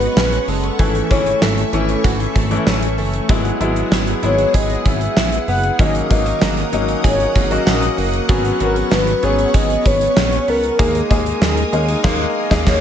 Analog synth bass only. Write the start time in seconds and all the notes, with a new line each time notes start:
0.16 A#1
0.48 F#1
0.79 G#1
1.11 G#1
1.41 G#1
1.73 G#1
2.04 G#1
2.36 G#1
2.67 A1
2.98 F#1
3.29 G#1
3.60 G#1
3.91 G#1
4.23 G#1
4.54 G#1
4.86 G#1
5.16 A#1
5.48 F#1
5.79 G#1
6.11 G#1
6.42 G#1
6.73 G#1
7.04 G#1
7.36 G#1
7.67 A#1
7.98 F#1
8.29 G#1
8.60 G#1
8.92 G#1
9.23 G#1
9.54 G#1
9.86 G#1
10.17 A#1
10.48 C#2
10.79 D#2
11.11 D#2
11.41 D#2
11.73 D#2
12.04 D#2
12.51 D#2
12.67 D#2